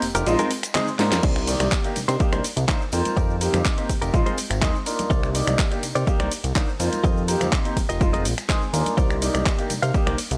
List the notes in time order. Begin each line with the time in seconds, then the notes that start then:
0.02 F1, open hi-hat, tambourine
0.15 F1 D#4 F4 G4 A#4, closed hi-hat, tambourine, shaker
0.26 A#1 G#3 C4 D#4 F4, ride, tambourine, shaker
0.39 C4 D#4 G#4 A#4, closed hi-hat, high conga, shaker
0.51 open hi-hat, tambourine
0.63 finger snap, muted clean electric guitar stroke, closed hi-hat, tambourine, shaker
0.75 G#3 C4 D#4 G#4 C5, clap, ride, tambourine, high conga, low conga, shaker
0.88 shaker
0.99 G#2 A#3 D4 D#4 F4, snare, open hi-hat, tambourine
1.11 F2, snare, closed hi-hat, tambourine, high conga, shaker
1.23 C2 D4 D#4 A#4 C5, kick, crash, ride, shaker
1.36 finger snap, shaker
1.47 D#3 A#3 G4 D5, open hi-hat, ride, tambourine, shaker
1.60 C2, finger snap, muted clean electric guitar stroke, closed hi-hat, tambourine, high conga, shaker
1.72 kick, clap, tambourine, shaker
1.84 A#3 D4 D#4 G4, muted clean electric guitar stroke, closed hi-hat, shaker
1.96 C3, open hi-hat, ride, tambourine, high conga, shaker
2.08 C3 D4 D#4 A#4 C5, closed hi-hat, tambourine, shaker
2.20 C2 A#3 D4 D#4 G4, kick, ride, tambourine, shaker
2.32 C2 D4 D#4 A#4 C5, finger snap, closed hi-hat, high conga, shaker
2.44 open hi-hat, ride, tambourine, shaker
2.57 C2, muted clean electric guitar stroke, closed hi-hat, tambourine, shaker
2.68 A#3 D4 D#4 A#4 C5, kick, clap, ride, tambourine, high conga, low conga, shaker
2.81 shaker
2.92 F2 A#3 C4 D#4 F4, muted clean electric guitar stroke, open hi-hat, ride, tambourine, shaker
3.05 closed hi-hat, tambourine, high conga, shaker
3.17 F2 D#4 F4 G4 A#4, kick, ride, tambourine, shaker
3.30 shaker
3.41 A#3 C4 D#4 G4, open hi-hat, ride, tambourine, shaker
3.53 F2, finger snap, muted clean electric guitar stroke, closed hi-hat, tambourine, high conga, low conga, shaker
3.65 kick, clap, ride, shaker
3.77 A#3 C4 D#4 G4, muted clean electric guitar stroke, closed hi-hat, shaker
3.89 F1, kick, open hi-hat, ride, tambourine, shaker
4.02 F1 D#4 F4 G4 A#4, closed hi-hat, tambourine, shaker
4.13 A#1 G#3 C4 D#4 F4, kick, ride, shaker
4.26 D#4 G#4 A#4 C5, closed hi-hat, high conga, shaker
4.37 open hi-hat, ride, tambourine, shaker
4.50 G#1, finger snap, muted clean electric guitar stroke, closed hi-hat, tambourine, shaker
4.61 D#2 G#3 C4 D#4 G#4 A#4 D#5, kick, clap, ride, tambourine, high conga, shaker
4.75 shaker
4.86 A#3 D4 D#4 F4, muted clean electric guitar stroke, open hi-hat, ride, tambourine, shaker
4.99 closed hi-hat, tambourine, high conga, shaker
5.10 C2 D#4 A#4 C5 D5, kick, ride, tambourine, shaker
5.23 finger snap, shaker
5.34 A#3 D#4 G4 D5, open hi-hat, ride, tambourine, shaker
5.47 C2, finger snap, muted clean electric guitar stroke, closed hi-hat, tambourine, high conga, shaker
5.59 muted clean electric guitar stroke, kick, clap, ride, shaker
5.71 A#3 D4 D#4 G4, muted clean electric guitar stroke, closed hi-hat, shaker
5.83 C3, open hi-hat, ride, tambourine, shaker
5.95 C3 D#4 A#4 C5 D5, closed hi-hat, shaker
6.07 C2 A#3 D4 D#4 G4, kick, ride, tambourine, shaker
6.20 C2 D#4 A#4 C5 D5, finger snap, closed hi-hat, high conga, shaker
6.31 open hi-hat, ride, tambourine, shaker
6.44 C2, muted clean electric guitar stroke, closed hi-hat, tambourine, shaker
6.55 A#3 D4 D#4 A#4 C5 D5, kick, clap, ride, tambourine, high conga, low conga, shaker
6.69 shaker
6.79 F2 A#3 C4 D#4 F4, muted clean electric guitar stroke, open hi-hat, ride, tambourine, shaker
6.93 closed hi-hat, tambourine, high conga, shaker
7.04 F2 F4 G4 A#4 D#5, kick, ride, tambourine, shaker
7.17 shaker
7.28 A#3 C4 D#4 G4, open hi-hat, ride, tambourine, shaker
7.40 F2, finger snap, muted clean electric guitar stroke, closed hi-hat, tambourine, high conga, low conga, shaker
7.52 muted clean electric guitar stroke, kick, clap, ride, tambourine, shaker
7.65 A#3 C4 D#4 G4, muted clean electric guitar stroke, closed hi-hat, shaker
7.77 F1, kick, open hi-hat, ride, tambourine, high conga, shaker
7.89 F1 F4 G4 A#4 D#5, closed hi-hat, tambourine, shaker
8.00 G#3 C4 D#4 F4, kick, ride, shaker
8.13 G#4 A#4 C5 D#5, closed hi-hat, high conga, shaker
8.25 A#1, open hi-hat, ride, tambourine, shaker
8.38 finger snap, muted clean electric guitar stroke, closed hi-hat, tambourine, shaker
8.49 G#3 C4 D#4 G#4 A#4 C5 D#5 G#5, kick, clap, ride, tambourine, high conga, shaker
8.62 shaker
8.73 D#2 A#3 D4 D#4 F4, muted clean electric guitar stroke, open hi-hat, ride, tambourine, shaker
8.86 closed hi-hat, tambourine, high conga, shaker
8.97 C2 D#4 A#4 C5 D5, kick, ride, tambourine, shaker
9.10 finger snap, shaker
9.22 A#3 D#4 G4 D5, open hi-hat, ride, tambourine, shaker
9.34 C2, finger snap, muted clean electric guitar stroke, closed hi-hat, tambourine, high conga, shaker
9.46 muted clean electric guitar stroke, kick, clap, ride, tambourine, shaker
9.58 A#3 D4 D#4 G4, muted clean electric guitar stroke, closed hi-hat, shaker
9.70 C3, open hi-hat, ride, tambourine, high conga, shaker
9.83 C3 D#4 A#4 C5 F5, closed hi-hat, tambourine, shaker
9.94 C2 A#3 D4 D#4 G4, kick, ride, tambourine, shaker
10.07 C2 D#4 A#4 C5 D5, finger snap, closed hi-hat, high conga, shaker
10.18 open hi-hat, ride, tambourine, shaker
10.31 C2, muted clean electric guitar stroke, closed hi-hat, tambourine, shaker